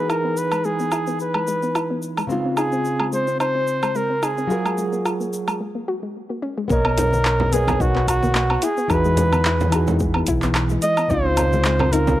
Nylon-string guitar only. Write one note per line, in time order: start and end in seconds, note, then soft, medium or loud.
0.00 2.26 E3 medium
0.00 2.27 D#4 medium
0.00 2.27 F#4 medium
0.00 2.28 G#4 medium
2.27 4.45 C#3 medium
2.27 4.46 C4 medium
2.27 4.47 D#4 medium
2.32 4.48 F4 medium
4.47 5.59 F#3 medium
4.47 5.59 F4 medium
4.47 5.60 G#4 medium
4.52 5.61 A#4 medium
6.68 6.71 B3 medium
6.68 7.49 A#4 medium
6.68 7.50 C#5 medium
6.73 7.51 D#5 medium
7.51 8.60 B3 medium
7.51 8.61 A#4 medium
7.51 8.62 C#5 medium
7.56 8.63 D#5 medium
8.88 9.69 E3 medium
8.88 9.69 D#4 medium
8.88 9.70 F#4 medium
8.93 9.71 G#4 medium
9.70 11.06 E3 medium
9.70 11.07 D#4 medium
9.70 11.08 F#4 medium
9.75 11.08 G#4 medium
11.08 11.89 C#3 medium
11.08 11.90 C4 medium
11.08 11.90 D#4 medium
11.13 11.91 F4 medium
11.91 12.20 C#3 medium
11.91 12.20 C4 medium
11.91 12.20 D#4 medium
11.96 12.20 F4 medium